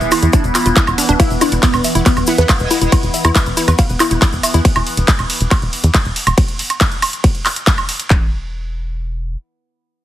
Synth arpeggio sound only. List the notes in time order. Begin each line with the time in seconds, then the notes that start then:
0.12 E4
0.23 E4
0.33 E4
0.55 F4
0.66 F4
0.77 E4
0.98 D4
1.09 D4
1.20 F5
1.41 E4
1.52 E4
1.63 E4
1.84 E5
1.95 E4
2.06 E4
2.28 E4
2.38 B4
2.49 F5
2.71 E4
2.82 E4
2.92 E4
3.14 E5
3.25 E4
3.36 E4
3.57 E4
3.68 B4
3.79 F5
4.00 E4
4.11 E4
4.22 E4
4.43 E5
4.54 E4